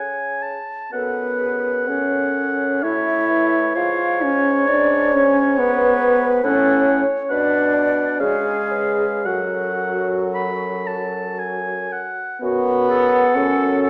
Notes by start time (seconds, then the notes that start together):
Already playing: C#3 G#4 G#5
0.43 A5
0.92 F#2 B3 A4 B4 F#5
1.40 G#4
1.88 C#4 A4 C#5
2.82 A2 E4 A4 C#5 E5
3.29 B4
3.75 G#2 F4 C#5 F5
4.22 C#4 C#5
4.68 D4 D5
5.13 C#4 C#5
5.58 B3 B4 C#5
6.02 B4
6.43 A2 C#4 A4 C#5 F#5
6.88 C#5
7.30 B2 D4 B4 D5 F#5
7.74 D5
8.20 C#3 G#3 G#4 C#5 F5
8.72 B4
9.25 F#2 F#3 F#4 A4 F#5
10.35 B5
10.87 A5
11.39 G#5
11.93 F#5
12.41 F#2 B3 F#4
12.88 G#4 A4 F#5
13.35 F#2 C#4 A4
13.81 A4 F#5